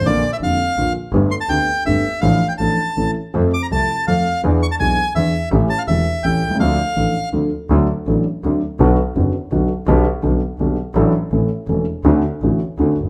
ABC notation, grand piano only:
X:1
M:3/4
L:1/16
Q:1/4=165
K:Dm
V:1 name="Grand piano" clef=bass
[B,,,B,,D,F,B,F]2 z2 [F,,,F,,D,F,B,F]2 z2 [B,,,B,,D,F,B,F]2 z2 | [G,,,G,,D,A,=B,G]2 z2 [D,,D,A,B,G]2 z2 [G,,,G,,D,A,B,G]2 z2 | [A,,,A,,F,A,DA]2 z2 [A,,,A,,F,A,DA]2 z2 [A,,,A,,E,A,^CA]2 z2 | [F,,F,A,CA]2 z2 [C,,C,F,A,CA]2 z2 [F,,F,A,CA]2 z2 |
[E,,E,=B,D^G]2 z2 [=B,,,=B,,E,B,DG]2 z2 [E,,E,B,DG]2 z2 | [A,,,A,,E,A,^CG]2 z2 [E,,,E,,E,A,CG]2 z2 [A,,,A,,E,A,CG]2 z/2 =B,,,/2 =C,,/2 ^C,,/2 | [D,,D,F,A,DA]2 z2 [A,,,A,,F,A,DA]2 z2 [D,,D,F,A,DA]2 z2 | [K:D] [D,,D,F,A,DA]2 z2 [A,,,A,,F,A,DA]2 z2 [D,,D,F,A,DA]2 z2 |
[B,,,B,,D,F,B,F]2 z2 [F,,,F,,D,F,B,F]2 z2 [B,,,B,,D,F,B,F]2 z2 | [B,,,B,,D,G,B,G]2 z2 [B,,,B,,D,G,B,G]2 z2 [B,,,B,,D,G,B,G]2 z2 | [A,,,A,,F,A,DA]2 z2 [A,,,A,,E,A,CA]2 z2 [E,,,E,,E,A,CA]2 z2 | [D,,D,A,CF]2 z2 [A,,,A,,D,A,CF]2 z2 [D,,D,A,CF]2 z/2 G,,,/2 z |]